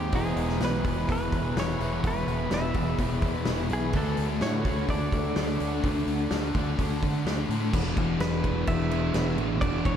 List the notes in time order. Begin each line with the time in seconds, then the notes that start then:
Already playing: D#2 G#2 D#3 G#3 C4 D#4 G4 G#4
0.12 E1 E2 B2 E3 G#3 B3 E4 G#4 B4 E5 B5, kick, open hi-hat
0.37 E1, open hi-hat
0.49 snare
0.60 B1 E2 B2 E3, snare, open hi-hat
0.65 B4
0.84 E1 E2 B2 E3, kick, open hi-hat
1.08 E1 E2 B2 E3 B4, kick, open hi-hat
1.32 E1, kick, open hi-hat
1.56 E1 E2 B2 E3 C#5, snare, open hi-hat
1.80 E1 E2 B2 E3, open hi-hat
2.03 E1 E2 B2 E3 G#3 B3 E4, kick, open hi-hat
2.07 B4
2.27 E1, open hi-hat
2.50 E1 E2 B2 E3, snare, open hi-hat
2.54 E5
2.74 E1 E2 B2 E3, kick, open hi-hat
2.98 E1 E2 B2 E3, kick, open hi-hat
3.22 E2, kick, open hi-hat
3.45 E1 E2 B2 E3, snare, open hi-hat
3.69 B1 E2 B2 E3 G#4, open hi-hat
3.93 D2 D3 A3 D4 F#4 A4 F#5 A5, kick, open hi-hat
4.17 D2, open hi-hat
4.41 A2 D3 A3 D4 C#5, snare, open hi-hat
4.65 D2 D3 A3 D4, kick, open hi-hat
4.89 D2 D3 A3 D4 D5, kick, open hi-hat
5.12 D2, kick, open hi-hat
5.36 D2 D3 A3 D4, snare, open hi-hat
5.60 D2 D3 A3 D4, open hi-hat
5.83 D2 D3 A3 D4 F#4, kick, open hi-hat
6.07 D2, open hi-hat
6.31 D2 D3 A3 D4, snare, open hi-hat
6.54 D2 D3 A3 D4, kick, open hi-hat
6.79 D2 D3 A3 D4, kick, open hi-hat
7.02 D3, kick, open hi-hat
7.25 D2 D3 A3 D4, snare, open hi-hat
7.49 A2 D3 A3 D4, open hi-hat
7.72 E1 E2 B2 E3 B3 D4 G#4, kick, crash
7.97 E1 B2 E3, kick, crash
8.19 E1 E2 B2 E3 B4, snare, crash
8.43 B2 E3, kick, crash
8.67 E1 E5, kick, crash
8.90 E2 B2 E3, crash
9.14 E1 E2 B2 E3, snare, crash
9.37 A1 B2 E3, crash
9.60 E1 E2 B2 D5, kick, crash
9.64 E3
9.84 E1 B2 E3 C#5, kick, crash